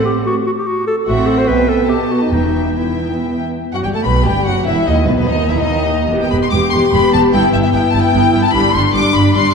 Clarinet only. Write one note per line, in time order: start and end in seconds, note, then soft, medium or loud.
0.06 0.15 G4 medium
0.26 0.36 F#4 medium
0.47 0.51 F#4 medium
0.59 0.68 G4 medium
0.67 0.87 F#4 medium
0.87 0.96 A4 medium
1.07 1.28 F#4 medium
1.27 1.39 A4 medium
1.38 1.49 C5 medium
1.48 1.70 B4 medium
1.69 1.91 A4 medium
1.89 2.13 G4 medium
2.11 2.24 F#4 medium
2.23 2.32 D#4 soft
2.33 2.79 D#4 soft
2.77 3.21 E4 soft